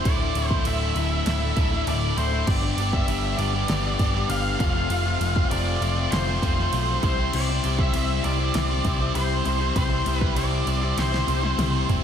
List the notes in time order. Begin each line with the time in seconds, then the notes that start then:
0.04 D1 D2 A2 D3 A3 E4 D5, kick, ride
0.20 D3 A3 E4
0.35 D1 A2 D3 A3 E4, ride
0.48 A3 E4 C5, kick
0.52 D3
0.65 D1 D2 A2 D3 A3 E4 E5, ride
0.95 D1 A2 D3 A3 E4, ride
1.11 D3 A3 E4
1.26 D1 A2 D3 A3 E4 E5, snare, ride
1.42 D3 A3 E4
1.56 D1 A2 D3 A3 E4, kick, ride
1.72 D3 A3 E4, snare
1.87 D1 D2 A2 D3 A3 E4 D5, ride
2.17 D1 A2 D3 A3 E4 C5, ride
2.33 D3 A3 E4
2.47 G1 G2 D3 G3 B3 D4 G4 D5, kick, crash
2.63 G3 B3 D4 G4
2.77 G1 G3 B3 D4 G4, ride
2.93 G3 B3 D4 G4 E5, kick
3.08 G1 G2 D3 G3 B3 D4 G4, ride
3.38 G1 G3 B3 D4 G4 D5, ride
3.54 G3 B3 D4 G4
3.68 G1 G3 B3 D4 G4, snare, ride
3.83 G3 B3 D4 G4
3.99 G1 G3 B3 D4 G4, kick, ride
4.14 G3 B3 D4 G4, snare
4.29 G1 G2 D3 G3 B3 D4 G4 F5, ride
4.59 F1 F2 C3 F3 A3 C4 F4 F5, kick, ride
4.75 F3 A3 C4 F4
4.90 F1 F2 C3 F3 A3 C4 F4, ride
5.04 F3 A3 C4 F4
5.20 F1 F3 A3 C4 F4, ride
5.36 F3 A3 C4 F4, kick
5.51 F1 F2 C3 F3 A3 C4 F4 D5, ride
5.81 F1 F3 A3 C4 F4, ride
5.97 F3 A3 C4 F4
6.11 F1 F3 A3 C4 F4 C5, snare, ride
6.28 F3 A3 C4 F4
6.42 F1 F3 A3 C4 F4, kick, ride
6.57 F3 A3 C4 F4, snare
6.72 B1 F2 C3 F3 A3 C4 F4, ride
7.02 C2 C3 G3 C4 E4 G4 C5, kick, ride
7.18 C4 E4 G4 C5
7.33 C2 C3 G3 C4 E4 G4 C5 D5, crash
7.49 C4 E4 G4 C5
7.63 C2 C4 E4 G4 C5, ride
7.78 C4 E4 G4 C5 E5, kick
7.93 C2 C3 G3 C4 E4 G4 C5, ride
8.24 C2 C4 E4 G4 C5 D5, ride
8.39 C4 E4 G4 C5
8.54 C2 C4 E4 G4 C5, snare, ride
8.70 C4 E4 G4 C5
8.85 C2 C4 E4 G4 C5, kick, ride
9.00 C4 E4 G4 C5
9.14 C2 C3 G3 C4 E4 G4 C5, ride
9.45 C2 C4 E4 G4 C5, ride
9.60 C4 E4 G4 C5
9.75 C2 C3 G3 C4 E4 G4 C5, kick, ride
9.90 C4 E4 G4 C5
10.06 C2 C4 E4 G4 C5, ride
10.17 B4
10.21 C4 E4 G4 C5, kick
10.36 C2 C3 G3 C4 E4 G4 C5 D5, ride
10.66 C2 C4 E4 G4 C5, ride
10.81 C4 E4 G4 C5
10.96 C2 C4 E4 G4 C5, snare, ride
11.12 C4 E4 G4 C5, snare
11.27 C2 C4 E4 G4 C5, ride
11.42 C4 E4 G4 C5, high tom
11.57 C2 C3 G3 C4 E4 G4 C5, mid tom, ride
11.87 F#1 C4 E4 G4 C5, floor tom, ride